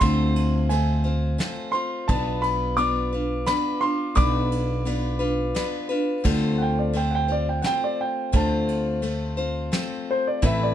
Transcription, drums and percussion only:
0.01 kick medium
0.01 ride medium
0.36 ride soft
0.71 ride soft
1.40 snare medium
1.40 ride soft
2.09 kick medium
2.09 ride soft
2.43 ride soft
2.78 ride soft
3.47 snare medium
3.47 ride soft
4.17 kick medium
4.17 ride soft
4.52 ride soft
4.86 ride soft
5.56 snare medium
5.56 ride soft
6.25 kick medium
6.25 crash medium
6.95 ride soft
7.64 snare medium
7.64 ride soft
8.34 kick medium
8.34 ride soft
8.68 ride soft
9.03 ride soft
9.73 snare medium
9.73 ride medium
10.42 kick medium
10.42 ride soft

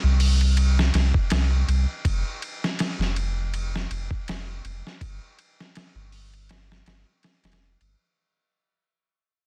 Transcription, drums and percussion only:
0.20 open hi-hat medium
0.41 ride soft
0.57 ride medium
0.79 snare medium
0.94 snare medium
0.94 ride medium
1.14 kick loud
1.30 snare loud
1.30 ride medium
1.69 ride medium
2.05 kick loud
2.05 ride medium
2.42 ride medium
2.64 snare medium
2.79 snare loud
2.79 ride medium
3.01 snare soft
3.16 ride medium
3.54 ride medium
3.76 snare soft
3.91 ride medium
4.11 kick loud
4.28 snare loud
4.28 ride loud
4.65 ride medium
4.87 snare soft
5.01 kick loud
5.01 ride loud
5.39 ride medium
5.60 snare soft
5.75 snare loud
5.75 ride medium
6.12 open hi-hat medium
6.33 ride soft
6.49 snare loud
6.49 ride medium
6.72 snare medium
6.86 snare loud
6.86 ride medium
7.23 snare loud
7.23 ride medium
7.44 snare medium
7.44 ride medium
7.52 snare medium
7.52 ride medium
7.81 ride medium

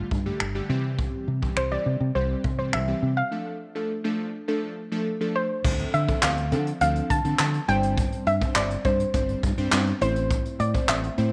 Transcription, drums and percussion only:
0.11 kick medium
0.40 finger snap loud
0.99 kick loud
1.43 kick medium
1.57 finger snap loud
2.44 kick medium
2.73 finger snap loud
5.64 kick loud
5.64 crash loud
5.79 closed hi-hat medium
5.94 closed hi-hat medium
6.08 kick medium
6.08 closed hi-hat medium
6.23 snare medium
6.23 clap loud
6.37 closed hi-hat medium
6.52 closed hi-hat medium
6.67 closed hi-hat medium
6.81 closed hi-hat medium
6.96 closed hi-hat medium
7.10 kick loud
7.10 closed hi-hat medium
7.24 closed hi-hat medium
7.39 snare loud
7.39 clap loud
7.54 closed hi-hat medium
7.68 closed hi-hat medium
7.83 closed hi-hat medium
7.97 kick loud
7.97 closed hi-hat medium
8.12 closed hi-hat medium
8.26 closed hi-hat medium
8.41 kick medium
8.41 closed hi-hat medium
8.56 snare medium
8.56 clap loud
8.70 closed hi-hat medium
8.85 kick loud
8.85 closed hi-hat medium
9.00 closed hi-hat medium
9.14 kick medium
9.14 closed hi-hat loud
9.29 closed hi-hat medium
9.43 kick loud
9.43 closed hi-hat medium
9.58 closed hi-hat medium
9.72 snare loud
9.72 clap loud
9.87 closed hi-hat soft
10.01 closed hi-hat medium
10.16 closed hi-hat medium
10.31 kick loud
10.31 closed hi-hat medium
10.45 closed hi-hat medium
10.60 closed hi-hat medium
10.74 kick medium
10.74 closed hi-hat medium
10.89 snare medium
10.89 clap loud
11.03 closed hi-hat medium
11.18 closed hi-hat medium

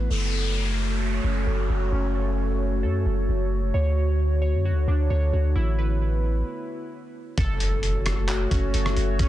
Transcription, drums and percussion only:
7.38 kick loud
7.38 closed hi-hat medium
7.60 closed hi-hat medium
7.83 closed hi-hat medium
8.06 cross-stick medium
8.06 closed hi-hat medium
8.29 clap loud
8.29 closed hi-hat medium
8.51 kick loud
8.51 closed hi-hat medium
8.74 closed hi-hat medium
8.86 cross-stick medium
8.97 closed hi-hat medium
9.19 kick loud
9.19 closed hi-hat medium

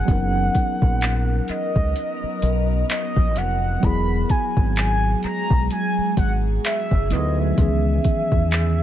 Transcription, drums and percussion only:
0.08 kick loud
0.08 closed hi-hat medium
0.55 kick medium
0.55 closed hi-hat medium
0.82 kick loud
1.01 clap loud
1.01 closed hi-hat medium
1.48 closed hi-hat medium
1.76 kick loud
1.96 closed hi-hat medium
2.42 closed hi-hat medium
2.89 clap loud
2.89 closed hi-hat medium
3.16 kick medium
3.36 closed hi-hat medium
3.83 kick loud
3.83 closed hi-hat medium
4.29 kick medium
4.29 closed hi-hat medium
4.57 kick loud
4.76 clap loud
4.76 closed hi-hat medium
5.23 closed hi-hat medium
5.50 kick loud
5.71 closed hi-hat medium
6.17 kick medium
6.17 closed hi-hat medium
6.64 clap loud
6.64 closed hi-hat medium
6.91 kick medium
7.10 closed hi-hat medium
7.58 kick loud
7.58 closed hi-hat medium
8.04 kick medium
8.04 closed hi-hat medium
8.32 kick loud
8.51 clap loud
8.51 closed hi-hat medium

